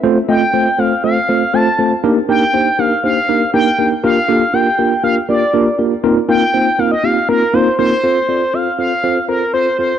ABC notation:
X:1
M:4/4
L:1/16
Q:1/4=120
K:Fmix
V:1 name="Analog synth lead"
z2 g4 f2 f4 a3 z | z2 g4 f2 f4 g3 z | f4 g4 f2 d4 z2 | z2 g4 f e f2 B2 c2 c2- |
c4 f2 f4 B2 c2 c2 |]
V:2 name="Tine electric piano"
[A,CFAc]2 [A,CFAe]2 [A,CFAc]2 [A,CFAc]2 [A,CFAc]2 [A,CFAc]2 [A,CFAc]2 [A,CFAc]2 | [B,DEGB]2 [B,DEGB]2 [B,DEGc]2 [B,DEGB]2 [B,DEGc]2 [B,DEGB]2 [B,DEGB]2 [B,DEGB]2 | [B,DFGB]2 [B,DFGA]2 [B,DFGB]2 [B,DFGB]2 [B,DFGB]2 [B,DFGB]2 [B,DFGB]2 [B,DFGB]2 | [B,CEFB]2 [B,CEFB]2 [B,CEFc]2 [B,CEFB]2 [B,CEFG]2 [B,CEFB]2 [B,CEFB]2 [B,CEFB]2 |
[CFAc]2 [CFAd]2 [CFAc]2 [CFAc]2 [CFAc]2 [CFAc]2 [CFAc]2 [CFAc]2 |]